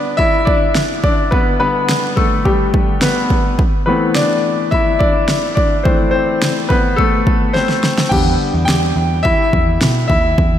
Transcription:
Already playing: grand piano D3 G3 B3 D4 B4 D5
0.17 grand piano E4 E5, kick
0.45 grand piano D4 D5, kick
0.75 snare
1.04 grand piano D4 D5, kick
1.31 grand piano B3 B4, kick
1.60 grand piano D3 G3 B3 B4
1.89 snare
2.16 grand piano A3 A4, kick
2.45 grand piano G3 G4, kick
2.74 kick
3.02 grand piano B3 B4, snare
3.30 kick
3.59 kick
3.86 grand piano E3 A3 B3 C4 B4
4.15 grand piano D4 D5, snare
4.71 grand piano E4 E5, kick
4.99 grand piano D4 D5, kick
5.28 snare
5.55 grand piano D4 D5, kick
5.83 grand piano E3 A3 C4 C5, kick
6.11 grand piano C4 C5
6.42 snare
6.69 grand piano B3 B4, kick
6.96 grand piano A3 A4, kick
7.27 kick
7.53 grand piano C4 C5, snare
7.69 snare
7.84 snare
7.98 snare
8.09 picked electric bass E2, grand piano D3 G3 B3 G4 G5, kick, crash
8.54 picked electric bass E2
8.65 picked electric bass E2, grand piano G4 G5, snare
8.96 picked electric bass E2
9.23 grand piano E4 E5, kick
9.53 picked electric bass E2, kick
9.81 picked electric bass B2, snare
10.08 picked electric bass D#2, grand piano E4 E5, kick
10.38 picked electric bass E2, kick

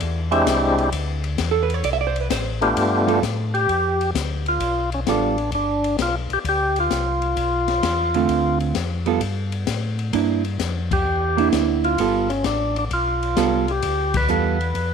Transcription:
Already playing: hollow-body jazz guitar D5
0.00 tonewheel organ E2, kick, ride
0.31 tonewheel organ G#3 C4 D4 E4 G4, hollow-body jazz guitar E5, ride
0.46 tonewheel organ C2, kick, snare, hi-hat pedal, ride
0.78 ride
0.92 tonewheel organ D2, kick, ride
1.24 ride
1.38 tonewheel organ E2, kick, snare, hi-hat pedal, ride
1.51 hollow-body jazz guitar A4
1.63 hollow-body jazz guitar B4
1.70 ride
1.74 hollow-body jazz guitar C#5
1.84 tonewheel organ C2, hollow-body jazz guitar D5, kick, ride
1.93 hollow-body jazz guitar E5
2.01 hollow-body jazz guitar D5
2.07 hollow-body jazz guitar C5
2.16 ride
2.20 hollow-body jazz guitar B4
2.30 tonewheel organ A1, hollow-body jazz guitar C5, kick, snare, hi-hat pedal, ride
2.61 tonewheel organ A3 B3 D4 F4 G4, ride
2.76 tonewheel organ G2, kick, ride
3.07 hollow-body jazz guitar G3 B3 F4 A4, ride
3.22 tonewheel organ A2, kick, snare, hi-hat pedal, ride
3.54 tonewheel organ G4, ride
3.69 tonewheel organ F2, kick, ride
4.01 ride
4.15 tonewheel organ D2, kick, snare, hi-hat pedal, ride
4.46 tonewheel organ F4, ride
4.60 tonewheel organ B1, kick, ride
4.92 tonewheel organ C#4, ride
5.06 tonewheel organ A1 D4, hollow-body jazz guitar G3 B3 F4 A4, kick, snare, hi-hat pedal, ride
5.38 ride
5.52 tonewheel organ G1 D4, kick, ride
5.84 ride
5.98 tonewheel organ B1 F4, kick, snare, hi-hat pedal, ride
6.30 tonewheel organ B1 G4, ride
6.45 tonewheel organ D2, kick, ride
6.49 tonewheel organ G4
6.76 ride
6.80 tonewheel organ F4
6.90 tonewheel organ C2, kick, snare, hi-hat pedal, ride
7.22 ride
7.36 tonewheel organ B1, kick, ride
7.68 snare, ride
7.83 tonewheel organ E2, kick, snare, hi-hat pedal, ride
8.14 hollow-body jazz guitar D3 A3 C4 F4, ride
8.29 tonewheel organ D2, kick, ride
8.60 ride
8.75 tonewheel organ F2, kick, snare, hi-hat pedal, ride
9.06 hollow-body jazz guitar G3 B3 F4 A4, ride
9.21 tonewheel organ G2, kick, ride
9.52 ride
9.67 tonewheel organ A2, kick, snare, hi-hat pedal, ride
9.99 ride
10.13 tonewheel organ G2, hollow-body jazz guitar A#3 D4 E4, kick, ride
10.45 ride
10.60 tonewheel organ F2, kick, snare, hi-hat pedal, ride
10.91 tonewheel organ G4, kick, ride
11.05 tonewheel organ E2
11.37 hollow-body jazz guitar A#3 D4 E4, ride
11.52 tonewheel organ D2, kick, snare, hi-hat pedal, ride
11.84 tonewheel organ F4, ride
11.98 tonewheel organ G1, hollow-body jazz guitar G3 B3 F4 A4, kick, ride
12.29 tonewheel organ C#4, ride
12.44 tonewheel organ A1 D4, kick, snare, hi-hat pedal, ride
12.76 tonewheel organ D4, ride
12.91 tonewheel organ B1 F4, kick, ride
13.23 ride
13.37 tonewheel organ C2, hollow-body jazz guitar G3 B3 F4 A4, kick, snare, hi-hat pedal, ride
13.68 tonewheel organ G4, ride
13.82 tonewheel organ D2, kick, ride
14.14 tonewheel organ B4, kick, ride
14.28 tonewheel organ E2, hollow-body jazz guitar G3 B3 F4 A4, hi-hat pedal
14.61 ride
14.74 tonewheel organ F2, kick, ride

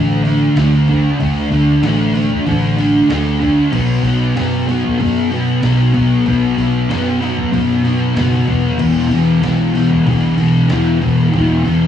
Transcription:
Already playing: fingered electric bass A1, distorted electric guitar D3 A3 D4
0.23 distorted electric guitar A3 D4, open hi-hat
0.56 fingered electric bass D2, distorted electric guitar D3 A3 D4, snare, open hi-hat
0.88 distorted electric guitar A3 D4, kick, open hi-hat
1.19 fingered electric bass D2, distorted electric guitar D3 A3 D4, kick, open hi-hat
1.50 fingered electric bass D2, distorted electric guitar A3 D4, open hi-hat
1.82 fingered electric bass A1, distorted electric guitar D3 A3 D4, snare, open hi-hat
2.14 distorted electric guitar A3 D4, open hi-hat
2.31 kick
2.45 fingered electric bass A1, distorted electric guitar D3 A3 D4, kick, open hi-hat
2.77 distorted electric guitar A3 D4, open hi-hat
3.09 fingered electric bass D2, distorted electric guitar D3 A3 D4, snare, open hi-hat
3.40 distorted electric guitar A3 D4, kick, open hi-hat
3.72 fingered electric bass B1, distorted electric guitar B2 F#3 B3, kick, crash
4.03 fingered electric bass B1, distorted electric guitar F#3 B3, open hi-hat
4.35 fingered electric bass F#2, distorted electric guitar B2 F#3 B3, snare, open hi-hat
4.67 distorted electric guitar F#3 B3, open hi-hat
4.84 kick
4.98 fingered electric bass F#2, distorted electric guitar B2 F#3 B3, kick, open hi-hat
5.31 distorted electric guitar F#3 B3, open hi-hat
5.62 fingered electric bass B1, distorted electric guitar B2 F#3 B3, snare, open hi-hat
5.94 distorted electric guitar F#3 B3, kick, open hi-hat
6.26 fingered electric bass B1, distorted electric guitar B2 F#3 B3, kick, open hi-hat
6.58 fingered electric bass B1, distorted electric guitar F#3 B3, open hi-hat
6.89 fingered electric bass F#2, distorted electric guitar B2 F#3 B3, snare, open hi-hat
7.21 distorted electric guitar F#3 B3, open hi-hat
7.37 kick
7.52 fingered electric bass F#2, distorted electric guitar B2 F#3 B3, kick, open hi-hat
7.84 distorted electric guitar F#3 B3, open hi-hat
8.16 fingered electric bass F#1, distorted electric guitar B2 F#3 B3, snare, open hi-hat
8.47 fingered electric bass E1, distorted electric guitar F#3 B3, kick, open hi-hat
8.78 distorted electric guitar E2 B2 E3, fingered electric bass E2, kick, crash
9.10 fingered electric bass E2, distorted electric guitar B2 E3, open hi-hat
9.42 fingered electric bass B1, distorted electric guitar E2 B2 E3, snare, open hi-hat
9.74 distorted electric guitar B2 E3, open hi-hat
9.91 kick
10.06 fingered electric bass B1, distorted electric guitar E2 B2 E3, kick, open hi-hat
10.38 distorted electric guitar B2 E3, open hi-hat
10.69 distorted electric guitar E2 B2 E3, fingered electric bass E2, snare, open hi-hat
11.00 distorted electric guitar B2 E3, kick, open hi-hat
11.33 distorted electric guitar E2 B2 E3, fingered electric bass E2, kick, open hi-hat
11.64 fingered electric bass E2, distorted electric guitar B2 E3, open hi-hat

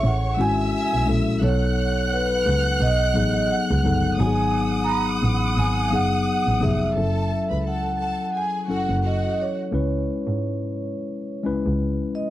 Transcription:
Already playing: tine electric piano C#4 E4 G#4 A4, violin section C#5 C#6
0.04 double bass A1, vibraphone F#5
0.37 double bass G#1, tine electric piano G#3 C#4 E4 F#4, violin section E5 E6, vibraphone G#5
0.93 double bass B1
1.06 double bass A#1, tine electric piano G#3 C#4 E4 A4
1.40 double bass B1, tine electric piano F#3 B3 D#4 A4, vibraphone C#5, violin section F#5 F#6
2.08 vibraphone C#5
2.13 vibraphone B4
2.47 double bass C#2
2.81 double bass B1, vibraphone D#5
3.14 double bass A1, tine electric piano F#3 B3 D#4 G#4
3.51 vibraphone F#5
3.71 double bass C#2
3.83 double bass G1, tine electric piano F#3 B3 D#4 A4
4.18 double bass G#1, tine electric piano F#3 B3 D#4 F#4, violin section F#5 D#6, vibraphone G#5
4.27 tine electric piano G#4
4.84 vibraphone A#5
4.90 vibraphone B5
5.23 double bass A1
5.57 double bass G#1, vibraphone G#5
5.88 tine electric piano F#3 B3, vibraphone F5
5.92 double bass F#1, tine electric piano D#4 G#4, vibraphone F#5
6.47 double bass A1
6.60 double bass F1, tine electric piano F#3 B3 D#4 G#4, vibraphone E5
6.95 double bass F#1, tine electric piano F#3 C#4 E4 A4, violin section A4 A5
7.50 double bass C#2, violin section B4 B5
7.65 violin section A4 A5, vibraphone F#5
7.99 violin section A4 A5, vibraphone F#5
8.34 violin section G#4 G#5, vibraphone G#5
8.68 double bass F#1, tine electric piano F#3 C#4 E4 A4, violin section F#4 F#5, vibraphone F#5
8.89 double bass F#1
9.03 violin section F#4 F#5, vibraphone D#5
9.41 vibraphone C#5
9.71 double bass C#2, tine electric piano G#3 C#4 E4 B4
10.27 double bass G#2
11.43 double bass C#2, tine electric piano G#3 C#4 E4 B4
11.66 double bass C#2
12.15 vibraphone D#5

